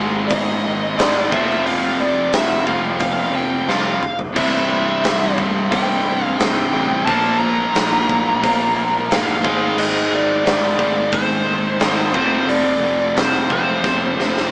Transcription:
Already playing: picked electric bass G#1, overdriven electric guitar G#2 D#3 G#3, distorted electric guitar G#2 D#3 G#3 C4 D#4 G#4
0.28 picked electric bass G#1, lead electric guitar D#5, kick, open hi-hat
0.64 picked electric bass G#1, overdriven electric guitar G#2 D#3 G#3
0.96 picked electric bass G#1, overdriven electric guitar G#2 D#3 G#3, lead electric guitar D5, open hi-hat
1.00 snare
1.30 picked electric bass F1, distorted electric guitar F2 C3 F3 A3 C4 F4, overdriven electric guitar F2 C3 F3, lead electric guitar E5, kick
1.50 snare
1.66 picked electric bass F1, lead electric guitar F5, open hi-hat
2.00 picked electric bass F1, lead electric guitar D5
2.32 picked electric bass F1, overdriven electric guitar F2 C3 F3, lead electric guitar E5, snare, open hi-hat
2.66 picked electric bass F1, distorted electric guitar C3 F3 A3 C4 F4, lead electric guitar F5, kick
2.70 distorted electric guitar F2
2.99 picked electric bass F1, lead electric guitar F5, kick, open hi-hat
3.33 picked electric bass F1, overdriven electric guitar F2 C3 F3, lead electric guitar G5
3.67 picked electric bass C2, overdriven electric guitar F2 C3 F3, lead electric guitar F5, snare
4.01 picked electric bass F1, mid tom
4.19 floor tom
4.33 picked electric bass C1, distorted electric guitar C2 G2 C3 G3 E4, overdriven electric guitar C2, kick, crash
4.37 overdriven electric guitar G2 C3, lead electric guitar E5
4.71 picked electric bass C1
5.04 picked electric bass C1, snare, open hi-hat
5.37 picked electric bass C1, overdriven electric guitar C2 G2 C3, kick
5.70 picked electric bass C1, distorted electric guitar C2 G2 C3 G3 E4, lead electric guitar G5, kick, open hi-hat
6.05 picked electric bass C1
6.24 lead electric guitar F5
6.38 picked electric bass C1, overdriven electric guitar C2 G2, lead electric guitar G5, snare, open hi-hat
6.42 overdriven electric guitar C3
6.71 picked electric bass A1, overdriven electric guitar C2 G2 C3
7.06 picked electric bass A#1, distorted electric guitar A#2 F3 A#3 D4 F4 A#4, overdriven electric guitar A#2 F3, lead electric guitar A5, kick, open hi-hat
7.11 overdriven electric guitar A#3
7.38 picked electric bass A#1, lead electric guitar A#5
7.74 picked electric bass A#1, snare, open hi-hat
8.08 picked electric bass A#1, overdriven electric guitar A#2 F3 A#3, kick
8.41 picked electric bass A#1, distorted electric guitar A#2 F3 A#3 D4 F4 A#4, kick, open hi-hat
8.76 picked electric bass A#1
9.09 picked electric bass G1, overdriven electric guitar A#2 F3 A#3, lead electric guitar F5, snare, open hi-hat
9.42 picked electric bass G#1, distorted electric guitar G#2 D#3 G#3 C4 D#4 G#4, overdriven electric guitar G#2 D#3, kick
9.46 overdriven electric guitar G#3
9.77 picked electric bass G#1, lead electric guitar D#5, crash
10.11 picked electric bass G#1
10.15 lead electric guitar D5
10.44 picked electric bass G#1, overdriven electric guitar G#2 D#3 G#3, snare, open hi-hat
10.77 picked electric bass G#1, distorted electric guitar G#2 D#3 G#3 C4 D#4 G#4, kick
11.12 picked electric bass G#1, lead electric guitar C5, kick, open hi-hat
11.44 picked electric bass G#1, overdriven electric guitar G#2 D#3 G#3
11.79 picked electric bass G#1, overdriven electric guitar G#2 D#3 G#3, snare, open hi-hat
12.12 picked electric bass F1, overdriven electric guitar F2 C3 F3, distorted electric guitar F2 C3 F3 A3 C4 F4, lead electric guitar C5, kick
12.47 picked electric bass F1, lead electric guitar D5, open hi-hat
12.80 picked electric bass F1
13.15 picked electric bass F1, overdriven electric guitar F2 C3 F3, lead electric guitar C5, snare, open hi-hat
13.49 picked electric bass F1, distorted electric guitar F2 C3 F3 A3 C4 F4, lead electric guitar C5, kick
13.84 picked electric bass F1, kick, snare
14.17 picked electric bass F1, overdriven electric guitar F2 C3 F3, snare
14.37 snare

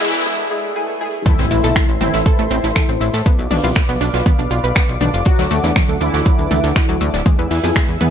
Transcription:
Already playing: analog synth pad B2 E3 G#3 E4 G#4, ambient pad E5, riser
0.01 analog polysynth E3 E4, synth pluck G#3, synth stab G#3 E4 G#4, open hi-hat
0.14 synth pluck B3, closed hi-hat
0.26 synth stab G#3 E4 G#4, swell
0.51 synth stab G#3 E4 G#4
0.76 synth stab G#3 E4 G#4
1.01 synth stab G#3 E4 G#4
1.26 analog polysynth E3 E4, synth pluck A3 A4, analog synth pad A4 C5 E5 C6, kick, closed hi-hat, mid tom, impact, shaker
1.38 analog synth bass A1, synth pluck C4 C5, snare, closed hi-hat
1.51 analog synth bass A1, synth pluck E4 E5, open hi-hat, shaker
1.63 analog synth bass B1, synth stab A3 E4 A4, synth pluck A4 A5, snare, closed hi-hat
1.76 synth pluck A3 A4, finger snap, kick, snare, closed hi-hat, shaker
1.89 analog synth bass A1, closed hi-hat
2.01 analog synth bass A1, analog polysynth E3 E4, synth pluck C4 C5, open hi-hat, mid tom, shaker
2.13 analog synth bass A1, synth pluck E4 E5, snare, closed hi-hat
2.26 synth pluck A4 A5, kick, closed hi-hat, shaker
2.39 analog synth bass A1, synth pluck A3 A4, closed hi-hat
2.50 analog synth bass A1, synth pluck C4 C5, open hi-hat, shaker
2.64 analog synth bass A1, synth pluck E4 E5, snare, closed hi-hat
2.76 synth pluck A3 A4, finger snap, kick, snare, closed hi-hat, mid tom, shaker
2.89 analog synth bass A1, synth pluck C4 C5, closed hi-hat
3.01 analog synth bass A1, synth pluck E4 E5, open hi-hat, shaker
3.13 analog synth bass A2, synth pluck A4 A5, snare, closed hi-hat
3.26 synth pluck B3 B4, analog synth pad B4 D5 F5 D6, kick, closed hi-hat, shaker
3.39 analog synth bass B1, closed hi-hat
3.51 analog synth bass B1, synth pluck D4 D5, open hi-hat, mid tom
3.64 analog synth bass C2, synth stab B2 F3 B3, synth pluck F4 F5, closed hi-hat
3.76 synth pluck B4 B5, finger snap, kick, snare, closed hi-hat, shaker
3.89 analog synth bass B1, synth pluck B3 B4, closed hi-hat
4.01 analog synth bass B1, synth pluck D4 D5, open hi-hat, shaker
4.14 analog synth bass B1, synth pluck F4 F5, snare, closed hi-hat
4.26 synth pluck B3 B4, kick, closed hi-hat, mid tom, shaker
4.39 analog synth bass B1, synth pluck D4 D5, closed hi-hat
4.51 analog synth bass B1, synth pluck F4 F5, open hi-hat
4.64 analog synth bass B1, synth pluck B4 B5, closed hi-hat
4.75 synth pluck B3 B4, finger snap, kick, snare, closed hi-hat, shaker
4.89 analog synth bass B1, closed hi-hat
5.01 analog synth bass B1, synth pluck D4 D5, open hi-hat, mid tom, shaker
5.14 analog synth bass F1, synth pluck F4 F5, closed hi-hat
5.25 analog polysynth F#3 F#4, synth pluck F#4 F#5, analog synth pad A4 F#5, kick, closed hi-hat, shaker
5.39 analog synth bass D2, synth pluck F#3 F#4, snare, closed hi-hat
5.51 analog synth bass D2, synth pluck A3 A4, open hi-hat, shaker
5.64 analog synth bass E2, synth stab D3 A3 D4, synth pluck D4 D5, snare, closed hi-hat
5.76 synth pluck F#3 F#4, finger snap, kick, snare, closed hi-hat, mid tom, shaker
5.89 analog synth bass D2, synth pluck A3 A4, closed hi-hat
6.01 analog synth bass D2, analog polysynth E3 E4, synth pluck D4 D5, open hi-hat, shaker
6.14 analog synth bass D2, synth pluck F#4 F#5, snare, closed hi-hat
6.26 synth pluck F#3 F#4, kick, closed hi-hat, shaker
6.39 analog synth bass D2, closed hi-hat
6.51 analog synth bass D2, synth pluck A3 A4, open hi-hat, mid tom, shaker
6.64 analog synth bass D2, synth pluck D4 D5, snare, closed hi-hat
6.76 synth pluck F#4 F#5, finger snap, kick, snare, closed hi-hat, shaker
6.89 analog synth bass D2, synth pluck F#3 F#4, closed hi-hat
7.01 analog synth bass D2, synth pluck A3 A4, open hi-hat, shaker
7.14 analog synth bass D1, synth pluck D4 D5, snare, closed hi-hat
7.26 synth pluck G#3 G#4, analog synth pad B4 E5 G#5 E6, kick, closed hi-hat, mid tom, shaker
7.39 analog synth bass E2, synth pluck B3 B4, closed hi-hat
7.51 analog synth bass E2, synth pluck E4 E5, open hi-hat
7.64 analog synth bass F2, synth stab E3 B3 E4, synth pluck G#4 G#5, closed hi-hat
7.76 synth pluck G#3 G#4, finger snap, kick, snare, closed hi-hat, shaker
7.89 analog synth bass E2, closed hi-hat
8.01 analog synth bass E2, synth pluck B3 B4, open hi-hat, mid tom, shaker

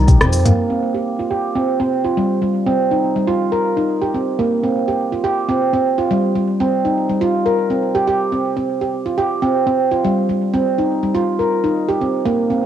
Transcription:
Already playing: detuned saw bass C2
0.08 handpan G4, kick, closed hi-hat, mid tom, cabasa
0.21 detuned saw bass F2, handpan C4, cross-stick, mid tom, cabasa
0.33 open hi-hat, cabasa
0.46 handpan A#3, closed hi-hat, mid tom, cabasa
0.70 handpan C4
0.95 handpan G4
1.19 handpan F4
1.31 handpan G4
1.56 handpan C4
1.80 handpan C4
2.05 handpan F4
2.17 handpan G3
2.42 handpan G3
2.67 handpan C4
2.91 handpan D#4
3.16 handpan G3
3.27 handpan F4
3.52 handpan A#4
3.77 handpan D#4
4.02 handpan G4
4.14 handpan C4
4.39 handpan A#3
4.63 handpan C4
4.88 handpan G4
5.12 handpan F4
5.24 handpan G4
5.49 handpan C4
5.73 handpan C4
5.98 handpan F4
6.11 handpan G3
6.35 handpan G3
6.60 handpan C4
6.85 handpan D#4
7.09 handpan G3
7.21 handpan F4
7.46 handpan A#4
7.70 handpan C4
7.95 handpan G4
8.07 handpan G4
8.32 handpan C4
8.57 handpan C4
8.81 handpan G4
9.06 handpan F4
9.18 handpan G4
9.42 handpan C4
9.67 handpan C4
9.91 handpan F4
10.04 handpan G3
10.29 handpan G3
10.54 handpan C4
10.78 handpan D#4
11.03 handpan G3
11.15 handpan F4
11.39 handpan A#4
11.64 handpan D#4
11.89 handpan G4
12.01 handpan C4
12.26 handpan A#3
12.50 handpan C4

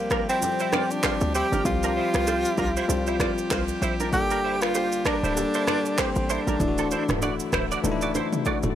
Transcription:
Already playing: 808-style bass C2, tine electric piano F3 G3 C4 G4, brass ensemble F3 G3 C4 G4, tenor saxophone A#3
0.10 clean electric guitar D4 A#4, finger snap, kick, cross-stick, shaker
0.29 808-style bass G1, tenor saxophone C4, clean electric guitar E4 C5, shaker
0.40 tine electric piano F3 G3 C4 G4, low conga, shaker
0.59 clean electric guitar E4 C5, shaker
0.72 clean electric guitar F4 D5, finger snap, cross-stick, low bongo, low conga, shaker
0.91 tenor saxophone D4, shaker
1.03 clean electric guitar F4 C5, finger snap, kick, cross-stick, clap, high bongo, shaker
1.21 808-style bass D2, shaker
1.35 clean electric guitar E4 C5, tenor saxophone G4, shaker
1.52 808-style bass G1, clean electric guitar D4 A#4, low bongo, shaker
1.64 808-style bass C2, tine electric piano F3 G3 C4 G4, tenor saxophone F4, kick, low conga, shaker
1.83 clean electric guitar D4 A#4, shaker
1.97 clean electric guitar E4 C5
2.14 808-style bass C2, finger snap, cross-stick, shaker
2.27 clean electric guitar F4 C5, high bongo, shaker
2.45 shaker
2.58 808-style bass C2, clean electric guitar D4 A#4, kick, shaker
2.77 clean electric guitar E4 C5, shaker
2.88 808-style bass C2, tine electric piano F3 G3 C4 F4, low conga, shaker
3.07 clean electric guitar E4 C5, shaker
3.20 clean electric guitar F4 D5, finger snap, kick, cross-stick, low bongo, low conga, shaker
3.38 shaker
3.50 808-style bass C2, clean electric guitar F4 C5, finger snap, kick, cross-stick, clap, high bongo, shaker
3.68 shaker
3.82 808-style bass A#1, clean electric guitar E4 C5, shaker
4.00 clean electric guitar D4 A#4, low bongo, shaker
4.12 808-style bass G1, brass ensemble D3 A#3 A4, tine electric piano G3 A#3 D4 A4, tenor saxophone G4, kick, low conga, shaker
4.31 clean electric guitar D4 A#4, shaker
4.44 clean electric guitar E4 C5
4.61 tenor saxophone F4, finger snap, cross-stick, shaker
4.75 clean electric guitar G4 C5, high bongo, shaker
4.92 shaker
5.05 tenor saxophone D4, clean electric guitar D4 A#4, finger snap, kick, cross-stick, shaker
5.23 808-style bass D1, clean electric guitar E4 C5, shaker
5.35 tine electric piano G3 A#3 D4 A4, low conga, shaker
5.54 clean electric guitar E4 C5, shaker
5.67 clean electric guitar F4 D5, finger snap, cross-stick, low bongo, low conga, shaker
5.85 shaker
5.98 tenor saxophone C4, clean electric guitar G4 C5, finger snap, kick, cross-stick, clap, high bongo, shaker
6.15 808-style bass A1, shaker
6.30 tenor saxophone D4, clean electric guitar E4 C5, shaker
6.47 808-style bass A1, clean electric guitar D4 A#4, low bongo, shaker
6.59 808-style bass D1, tine electric piano E3 A3 D4 E4, brass ensemble F#3 E4, kick, low conga, shaker
6.68 tine electric piano F#4
6.78 clean electric guitar C4 A4, shaker
6.91 clean electric guitar E4 C5, low bongo, shaker
7.09 808-style bass D1, finger snap, cross-stick, mid tom, low bongo, shaker
7.22 clean electric guitar F#4 D5, high bongo, shaker
7.40 shaker
7.53 808-style bass D1, clean electric guitar E4 C5, finger snap, kick, cross-stick, shaker
7.71 clean electric guitar F#4 D5, shaker
7.82 808-style bass D1, tine electric piano E3 A3 D4 D#4, high tom, low conga, shaker
7.91 tine electric piano E4
8.01 clean electric guitar F#4 D5, shaker
8.15 clean electric guitar E4 C5, low bongo, low conga, shaker
8.33 mid tom, shaker
8.45 tine electric piano D4 F#4, clean electric guitar F#4 D5, kick, high bongo, shaker
8.63 808-style bass D1, tine electric piano F#4 A4, mid tom, shaker

